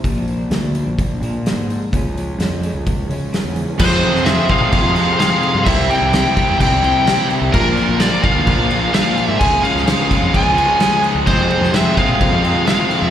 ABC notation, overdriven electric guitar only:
X:1
M:4/4
L:1/8
Q:1/4=128
K:Fm
V:1 name="Overdriven electric guitar"
z8 | z8 | [F,,C,F,A,CA] [F,A,CA] [F,A,CA] [F,A,CA] [F,,C,F,A,CA] [F,A,CA] [F,A,CA]2 | [C,G,C=EG] [CEG] [G,CEG] [CEG] [C,G,CEG] [CEG] [G,CEG]2 |
[B,,F,B,=DF] [B,DF] [F,B,DF] [B,DF] [B,,F,B,DF] [B,DF] [F,B,DF]2 | [D,F,A,DF] [A,DF] [F,A,DF] [A,DF] [D,F,A,DF] [A,DF] [F,A,DF]2 | [F,,C,F,A,CF] [F,A,CF] [F,A,CF] [F,A,CF] [F,,C,F,A,CF] [F,A,CF] [F,A,CF]2 |]